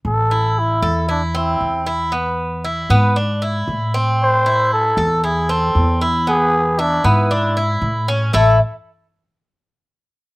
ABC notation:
X:1
M:4/4
L:1/8
Q:1/4=116
K:Am
V:1 name="Muted trumpet"
A2 E2 D E2 z | z8 | c2 A2 ^G A2 z | ^G2 D E4 z |
A z6 z |]
V:2 name="Cuban tres"
z E2 A E C2 E | B,2 E B, D E2 C- | C E2 A E C2 E | B,2 E B, D E2 ^C |
[A,EA] z6 z |]
V:3 name="Upright bass" clef=bass
A,,,3 E,,3 E,,2- | E,,3 ^G,,3 A,,2- | A,,3 E,,3 E,,2- | E,,3 ^G,,3 A,,2 |
A,,, z6 z |]